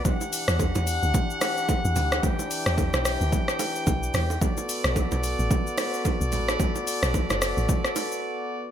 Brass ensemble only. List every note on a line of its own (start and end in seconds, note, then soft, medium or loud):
0.05 4.37 E3 medium
0.05 4.37 D4 medium
0.05 4.37 G4 medium
0.05 2.21 F#5 medium
2.23 4.39 G5 medium
4.41 8.71 B3 medium
4.41 8.71 F#4 medium
4.41 8.71 A4 medium
4.41 8.71 D5 medium